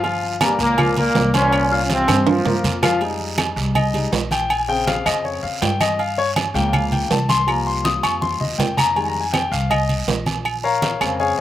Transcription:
Already playing: G1
0.03 F3 F4 F5, high conga, low agogo, long guiro
0.23 high conga
0.41 G2 G3 A#3 A#4 A#5, high conga, low timbale, low agogo, short guiro, claves
0.59 C#2 A#2 A#3, high conga, short guiro
0.78 F3 F4 F5, high conga, low conga, low agogo, long guiro, claves
0.97 A#2 A#3 A#4 A#5, high conga, low conga, low agogo
1.15 C2, high conga, low timbale, short guiro
1.34 A#2 C#4 C5 C6, high conga, low agogo, short guiro
1.52 high conga, low agogo, long guiro, claves
1.71 F4 F5 F6, high conga
1.84 C#4
1.90 C3 C4, high conga, low timbale, low agogo, short guiro
2.08 G2 C4 C5 C6, high conga, high timbale, low agogo, short guiro, claves
2.27 F3 F4, high conga, high timbale, long guiro
2.45 G2 A#3 A#4 A#5, low conga, low timbale
2.64 F2, low conga, low agogo, short guiro
2.82 F3 F4 F5, low conga, low timbale, low agogo, short guiro, claves
3.01 G3 G#3 D#4, high conga, low agogo, long guiro
3.20 high conga
3.38 high conga, low timbale, low agogo, short guiro, claves
3.56 C2, high conga, short guiro
3.75 D#5, high conga, low conga, low agogo, long guiro, claves
3.94 G3 G#3 D#4, high conga, low conga, low agogo
4.12 A#1, high conga, low timbale, short guiro
4.31 G5, high conga, low agogo, short guiro
4.50 G#5, high conga, low agogo, long guiro, claves
4.68 C#3 C4 G#4 G5, high conga
4.87 F5, high conga, low timbale, low agogo, short guiro
5.06 F2 D#5, high conga, low agogo, short guiro, claves
5.25 C#5, high conga, long guiro
5.43 F2 F5, high conga
5.62 G2 G5, high conga, low timbale, low agogo, short guiro
5.81 D#5, high conga, low agogo, short guiro, claves
5.99 F5, high conga, low agogo, long guiro
6.17 C#5, high conga
6.36 high conga, low timbale, low agogo, short guiro, claves
6.54 C#2 C#3 F3 A#3 G5, high conga, short guiro
6.73 F5, high conga, low conga, low agogo, long guiro, claves
6.92 G5, high conga, low conga, low agogo
7.10 C2 A5, high conga, low timbale, short guiro
7.29 C6, high conga, low agogo, short guiro
7.47 F3 G3 A#3 A#5, high conga, low agogo, long guiro, claves
7.67 C6, high conga
7.85 D#6, high conga, low timbale, low agogo, short guiro
8.03 F2 C#6, high conga, low agogo, short guiro, claves
8.22 C6, high conga, long guiro
8.40 D#2 D#5, low conga
8.58 F2 G5, low conga, low timbale, low agogo, short guiro
8.77 A#5, low conga, low agogo, short guiro, claves
8.95 D#3 G3 G#3 G#5, high conga, low agogo, long guiro
9.08 A#5
9.15 high conga
9.20 G#5
9.33 G5, high conga, low timbale, low agogo, short guiro, claves
9.52 C2 F5, high conga, short guiro
9.70 D#5, high conga, low conga, low agogo, long guiro, claves
9.89 high conga, low conga, low agogo
10.08 A#1, high conga, low timbale, short guiro
10.26 high conga, low agogo, short guiro
10.45 high conga, low agogo, long guiro, claves
10.63 A#4 C#5 F5 A#5, high conga
10.82 high conga, low timbale, low agogo, short guiro
11.00 F2 C#3 G#3 C4, high conga, low agogo, short guiro, claves
11.20 G#4 C#5 F5 G#5, high conga, long guiro

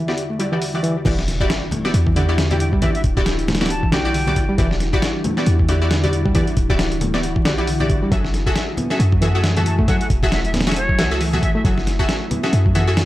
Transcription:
Already playing: E2 D3 G3 E5
0.08 B3 E4 F#4 G4 D5, snare
0.18 closed hi-hat
0.30 A3
0.39 G3 E4 F#4 G4 D5, closed hi-hat
0.52 E3 E4 F#4 G4 D5
0.62 open hi-hat
0.74 E3 E4 F#4 G4 D5
0.83 E3, closed hi-hat
1.05 E1 E3 G3 D4 E4 F#4 G4 D5, kick, closed hi-hat, crash, impact, high conga
1.19 snare
1.28 snare, closed hi-hat
1.40 E4 F#4 G4 D5, kick, high conga
1.50 snare, closed hi-hat
1.71 A3, closed hi-hat, high conga, low conga
1.84 B3 E4 F#4 G4 D5, snare
1.94 E2, closed hi-hat
2.07 E3, kick
2.16 D3 E4 F#4 G4 D5, closed hi-hat, high conga
2.29 E4 F#4 G4 D5
2.38 D3, snare, closed hi-hat
2.51 E4 F#4 G4 D5 G5, closed hi-hat, high conga, low conga
2.60 G5, closed hi-hat
2.73 G3, kick
2.82 E3 E4 F#4 G4 D5 E5, kick, closed hi-hat, high conga
2.95 E5, closed hi-hat
3.04 D1, kick, closed hi-hat
3.17 E4 F#4 G4 D5, kick, high conga
3.26 snare, closed hi-hat
3.39 closed hi-hat
3.48 A3, snare, closed hi-hat, high conga, low conga
3.55 snare, closed hi-hat
3.61 B3 E4 F#4 G4 D5, snare, closed hi-hat
3.66 snare, closed hi-hat
3.70 A5, closed hi-hat
3.83 E3, kick
3.92 B1 D3 E4 F#4 G4 D5 G5, snare, closed hi-hat, high conga
4.05 E4 F#4 G4 D5
4.14 D3, open hi-hat
4.27 E4 F#4 G4 D5, high conga, low conga
4.36 E1, kick, closed hi-hat
4.49 G3
4.58 E1 E3 E4 F#4 G4 D5, kick, closed hi-hat, high conga
4.71 snare
4.80 snare, closed hi-hat
4.93 E4 F#4 G4 D5, kick, high conga
5.02 snare, closed hi-hat
5.24 A3, closed hi-hat, high conga, low conga
5.37 B3 E4 F#4 G4 D5, snare
5.46 E2, closed hi-hat
5.59 E3, kick
5.68 D3 E4 F#4 G4 D5, closed hi-hat, high conga
5.81 E4 F#4 G4 D5
5.91 D3, snare, closed hi-hat
6.03 E4 F#4 G4 D5, closed hi-hat, high conga, low conga
6.13 closed hi-hat
6.26 G3, kick
6.35 E3 E4 F#4 G4 D5, kick, closed hi-hat, high conga
6.47 closed hi-hat
6.57 D1, kick, closed hi-hat
6.70 E4 F#4 G4 D5, kick, high conga
6.79 snare, closed hi-hat
6.92 closed hi-hat
7.01 A3, closed hi-hat, high conga, low conga
7.14 B3 E4 F#4 G4 D5, snare
7.23 closed hi-hat
7.36 E3, kick
7.45 B1 D3 E4 F#4 G4 D5, snare, closed hi-hat, high conga
7.58 E4 F#4 G4 D5
7.67 D3, open hi-hat
7.80 E4 F#4 G4 D5, high conga, low conga
7.90 E1, kick, closed hi-hat
8.02 G3
8.12 F#1 F#3 A3 F#4 G#4 A4 E5 G#5, kick, closed hi-hat, high conga
8.25 snare
8.34 snare, closed hi-hat
8.46 F#4 G#4 A4 E5, kick, high conga
8.56 snare, closed hi-hat
8.77 B3, closed hi-hat, high conga, low conga
8.90 C#4 F#4 G#4 A4 E5, snare
9.00 F#2, closed hi-hat
9.12 F#3, kick
9.21 E3 F#4 G#4 A4 E5, closed hi-hat, high conga
9.34 F#4 G#4 A4 E5
9.44 E3, snare, closed hi-hat
9.56 F#4 G#4 A4 E5 A5, closed hi-hat, high conga, low conga
9.66 A5, closed hi-hat
9.79 A3, kick
9.88 F#3 F#4 G#4 A4 E5 F#5, kick, closed hi-hat, high conga
10.01 F#5, closed hi-hat
10.10 E1, kick, closed hi-hat
10.23 F#4 G#4 A4 E5, kick, high conga
10.32 E5, snare, closed hi-hat
10.45 E5, closed hi-hat
10.54 B3, snare, closed hi-hat, high conga, low conga
10.61 snare, closed hi-hat
10.67 C#4 F#4 G#4 A4 E5, snare, closed hi-hat
10.72 snare, closed hi-hat
10.76 C#5, closed hi-hat
10.89 F#3, kick
10.98 C#2 E3 F#4 G#4 A4 E5, snare, closed hi-hat, high conga
11.11 F#4 G#4 A4 E5
11.20 E3, open hi-hat
11.33 F#4 G#4 A4 E5, high conga, low conga
11.43 F#1 E5, kick, closed hi-hat
11.55 A3 E5
11.64 F#1 F#3 F#4 G#4 A4 E5, kick, closed hi-hat, high conga
11.78 snare
11.87 snare, closed hi-hat
11.99 F#4 G#4 A4 E5, kick, high conga
12.09 snare, closed hi-hat
12.31 B3, closed hi-hat, high conga, low conga
12.43 C#4 F#4 G#4 A4 E5, snare
12.53 F#2, closed hi-hat
12.66 F#3, kick
12.75 E3 F#4 G#4 A4 E5, closed hi-hat, high conga
12.87 F#4 G#4 A4 E5
12.97 E3, snare, closed hi-hat

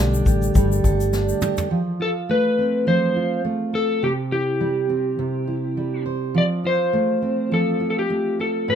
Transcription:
Already playing: B1 D3 G3 A3 D4 G4 A4
0.14 shaker
0.26 A1 G4, kick, shaker
0.42 shaker
0.55 G1 G3, kick, shaker
0.72 shaker
0.84 G1 A4, kick, shaker
1.00 shaker
1.13 D4, snare, shaker
1.29 shaker
1.41 G4, mid tom, shaker
1.57 floor tom, shaker
1.71 F3
2.00 F4 A4
2.29 A3 B4
2.59 C4
2.87 F3 C5
3.16 F4
3.45 A3
3.73 A4
4.03 C3 G4
4.32 E4 G4
4.61 G3
4.89 C4
5.19 C3
5.47 E4
5.77 G3
6.06 C5
6.34 F3 D5
6.64 F4 C5
6.93 A3
7.22 C4
7.51 F3 A4
7.80 F4
7.90 A4
7.99 G4
8.10 A3
8.39 A4
8.68 A2 C5

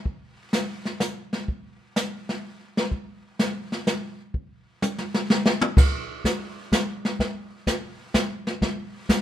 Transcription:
0.05 brush sweep, kick
0.53 snare, hi-hat pedal
0.85 snare
1.00 snare, hi-hat pedal
1.33 snare
1.48 brush sweep, kick
1.96 snare, hi-hat pedal
2.29 snare
2.77 snare
2.91 brush sweep, kick
3.39 snare, hi-hat pedal
3.72 snare
3.87 snare, hi-hat pedal
4.34 brush sweep, kick
4.82 hi-hat pedal, high tom
4.98 snare
5.14 snare
5.30 snare
5.46 snare
5.61 mid tom
5.77 brush sweep, kick, snare, crash
6.25 kick, snare, hi-hat pedal
6.72 kick, snare, hi-hat pedal
7.05 snare
7.19 brush sweep, kick, snare
7.67 kick, snare, hi-hat pedal
8.14 kick, snare, hi-hat pedal
8.47 snare
8.62 brush sweep, kick, snare
9.09 kick, snare, hi-hat pedal

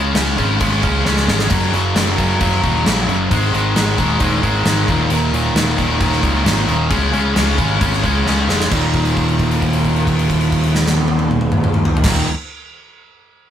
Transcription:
Already playing: C#2 C#3 G#3 C#4
0.15 C#2 C#3 G#3 C#4, snare, crash
0.37 G#1 C#3 G#3 C#4, kick, crash
0.60 G#1 C#3 G#3 C#4, kick, crash
0.82 C#2 C#3 G#3 C#4, kick, crash
1.05 C#2 C#3 G#3 C#4, snare
1.17 snare
1.28 G#1 C#3 G#3 C#4, snare
1.39 snare
1.49 F#1 F#2 C#3 F#3, kick, crash
1.73 F#1 F#2 C#3 F#3, crash
1.95 F#1 F#2 C#3 F#3, snare, crash
2.17 F#1 F#2 C#3 F#3, kick, crash
2.39 F#1 F#2 C#3 F#3, kick, crash
2.62 D#1 F#2 C#3 F#3, kick, crash
2.85 A#1 F#2 C#3 F#3, snare, crash
3.06 F#1 F#2 C#3 F#3, crash
3.30 G#1 G#2 D#3 G#3, kick, crash
3.53 G#1 G#2 D#3 G#3, crash
3.76 G#1 G#2 D#3 G#3, snare, crash
3.97 D#1 G#2 D#3 G#3, kick, crash
4.20 D#1 G#2 D#3 G#3, kick, crash
4.42 G#1 G#2 D#3 G#3, kick, crash
4.64 G#1 G#2 D#3, snare, crash
4.69 G#3
4.88 D#1 D#2 A#2 D#3, kick, crash
5.09 D#1 D#2 A#2 D#3, crash
5.32 D#1 D#2 A#2 D#3, crash
5.53 D#1 D#2 A#2 D#3, snare, crash
5.77 D#1 D#2 A#2 D#3, kick, crash
6.00 D#1 D#2 A#2 D#3, kick, crash
6.12 snare
6.22 C#2 D#2 A#2 D#3, kick, crash
6.44 G#1 D#2 A#2 D#3, snare, crash
6.67 D#1 D#2 A#2 D#3, crash
6.89 C#2 C#3 G#3 C#4, kick, crash
7.12 C#2 C#3 G#3 C#4, crash
7.35 C#2 C#3 G#3 C#4, snare, crash
7.57 G#1 C#3 G#3 C#4, kick, crash
7.80 G#1 C#3 G#3 C#4, kick, crash
7.93 snare
8.03 C#2 C#3 G#3 C#4, kick, crash
8.26 C#2 C#3 G#3 C#4, snare
8.47 F1 C#3 G#3 C#4, snare
8.60 snare
8.71 D#1 D#2 A#2 D#3, kick, crash
8.93 kick, crash
9.05 crash
9.17 kick, crash
9.28 crash
9.39 kick, crash
9.51 crash
9.62 kick, crash
9.73 crash
9.85 kick, crash
9.96 crash
10.07 kick, crash
10.19 crash
10.30 kick, crash
10.41 crash
10.52 kick, crash
10.63 crash
10.75 snare
10.86 snare
10.97 high tom
11.08 high tom
11.19 high tom
11.31 mid tom
11.41 mid tom
11.52 mid tom
11.64 mid tom
11.74 mid tom
11.85 floor tom
11.97 floor tom
12.04 D#1 D#2 A#2, kick, snare, crash
12.09 D#3

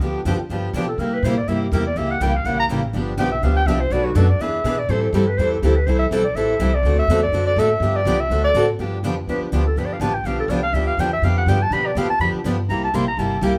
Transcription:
0.00 D2 D3 F3 B3 D4 G4
0.25 F2 D3 F3 B3 D4 G4
0.38 muted upright bass stroke
0.50 G2 D3 F3 B3 D4 G4
0.73 B2 D3 F3 B3 D4 G4
0.89 A4
0.98 C3 G3 A#3 E4 G4 A#4
1.13 B4
1.23 A#2 C3 G3 A#3 E4 G4 C5
1.37 D5
1.48 G2 C3 G3 A#3 E4 G4 E5
1.62 G4
1.72 E2 C3 G3 A#3 E4 G4 A#4
1.87 D5
1.96 C#2 C#3 E3 G3 A#3 C#4 E4 G4 E5
2.11 F#5
2.20 C2 C#3 E3 G3 A#3 C#4 E4 G4 G5
2.36 F5
2.45 A#1 C#3 E3 G3 A#3 C#4 E4 G4 F#5
2.60 A#5
2.69 A1 C#3 E3 G3 A#3 C#4 E4 G4
2.93 G1 D3 F3 B3 D4 G4
3.18 B1 D3 F3 B3 D4 G4 G5
3.32 E5
3.42 D2 D3 F3 B3 D4 G4 F5
3.56 G5
3.66 C2 D3 F3 B3 D4 G4 E5
3.80 C5
3.90 B1 B2 F#3 A3 D4 F#4 B4 D5
4.06 F#4
4.15 F#2 B2 F#3 A3 D4 F#4 A4 B4
4.29 D5
4.39 E2 E3 B3 D4 G#4 B4 E5
4.64 B2 E3 B3 D4 G#4 B4
4.79 D5
4.89 A2 E3 G3 C4 E4 A4 C5
5.02 E4
5.13 G2 E3 G3 C4 E4 G4 A4
5.27 B4
5.37 E2 E3 G3 C4 E4 A4 C5
5.52 E4
5.62 D2 E3 G3 C4 E4 G4 A4
5.76 B4
5.86 C2 E3 G3 C4 E4 A4 C5
5.99 E5
6.11 B1 E3 G3 C4 E4 A4
6.24 D5
6.35 A1 E3 G3 C4 E4 A4 E5
6.60 C2 E3 G3 C4 E4 A4
6.74 D5
6.83 D2 D3 A3 C4 F#4 A4
6.99 E5
7.08 E2 D3 A3 C4 F#4 A4
7.23 D5
7.32 F#2 D3 A3 C4 F#4 A4
7.47 D5
7.56 A2 D3 A3 C4 F#4 E5
7.60 A4
7.80 G2 D3 F3 B3 D4 G4
7.96 D5
8.05 C2 D3 F3 B3 D4 G4
8.20 E5
8.30 D2 D3 A3 C4 F#4 A4
8.44 D5
8.54 A2 D3 A3 C4 F#4 A4
8.79 G2 D3 F3 B3 D4 G4
9.03 F2 D3 F3 B3 D4 G4
9.27 E2 D3 F3 B3 D4 G4 B4
9.41 D4, muted upright bass stroke
9.52 D2 D3 F3 B3 D4 F4 G4
9.67 A4
9.76 G1 D3 F3 B3 D4 G4 B4
9.86 D5
9.93 F5
10.00 A1 D3 F3 B3 D4 G4 A5
10.14 G5
10.24 B1 D3 F3 B3 D4 G4 F5
10.40 A4
10.48 C2 D3 F3 B3 D4 G4 D5
10.63 F5
10.73 D2 D3 F3 B3 D4 G4 E5
10.87 F5
10.97 E2 D3 F3 B3 D4 G4 G5
11.13 E5
11.22 F2 D3 F3 B3 D4 G4 F5
11.38 F#5
11.46 G2 D3 F3 B3 D4 G4 G5
11.62 A5
11.71 B2 D3 F3 B3 D4 G4 B5
11.87 D5
11.95 E2 D3 F3 B3 D4 G4 F5
12.10 A5, muted upright bass stroke
12.19 F2 D3 F3 B3 D4 G4 B5
12.33 muted upright bass stroke
12.44 G2 D3 F3 B3 D4 G4
12.69 C2 C3 G3 A#3 E4 G4 A#5
12.84 A5
12.94 A#1 C3 G3 A#3 E4 G4 C6
13.08 A#5
13.17 G1 C3 G3 A#3 E4 G4 A5
13.41 C2 C3 G3 A#3 E4 G4

